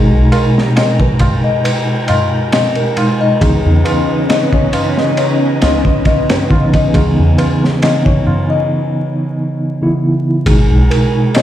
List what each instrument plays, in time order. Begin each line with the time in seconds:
Already playing: tine electric piano B2 G#3 D#4, music box G#4, string machine G5 A#5
0.13 sub bass B1, tabla na
0.32 music box A#4, ride, tabla na
0.56 snare, tabla na
0.76 music box D#5, snare, ride, tabla na
1.00 music box B4, kick, tabla na, tabla ge
1.19 kick, ride, tabla na, tabla ge
1.44 music box D#5, tabla na
1.64 music box B4, ride, tabla na
1.87 tabla na
2.08 music box D#5, ride, tabla na, tabla ge
2.33 tabla na
2.52 music box D#5, snare, ride, tabla na
2.75 music box A#4, ride, tabla na
2.97 tine electric piano B2 G#3 D#4, ride, tabla na
3.21 music box D#5, tabla na
3.39 sub bass C#2, tine electric piano C#3 E3 B3 D#4, string machine C#4 B4 D#5, music box G#4, kick, ride, tabla na
3.65 sub bass E2, tabla na
3.85 music box B4, ride, tabla na
4.08 tabla na
4.29 music box D#5, snare, ride, tabla na
4.52 music box C#5, kick, tabla na
4.73 ride, tabla na, tabla ge
4.97 music box D#5, snare, tabla na
5.17 music box C#5, ride, tabla na
5.41 tabla na
5.62 sub bass C#2, music box D#5, snare, ride, tabla na
5.85 kick, tabla na
6.05 music box D#5, kick, ride, tabla na
6.30 music box B4, snare, ride, tabla na, tabla ge
6.50 tine electric piano C#3 E3 B3 D#4, kick, tabla na
6.73 music box D#5, kick, ride, tabla na
6.94 sub bass C#2, tine electric piano C#3 E3 B3 D#4, music box G#4, kick, ride, tabla na
7.18 sub bass E2, tabla na
7.38 music box B4, ride, tabla na
7.62 snare, tabla na
7.82 music box D#5, snare, ride, tabla na
8.05 music box C#5, kick, tabla na, tabla ge
8.27 tabla na, tabla ge
8.50 music box D#5, tabla na
9.82 tine electric piano C#3 E3 B3 E4
10.46 sub bass G#1, tine electric piano B2 G#3 D#4, music box G#4, string machine G#4 A#5, kick, ride
10.71 sub bass B1
10.91 music box A#4, ride
11.35 music box D#5, snare, ride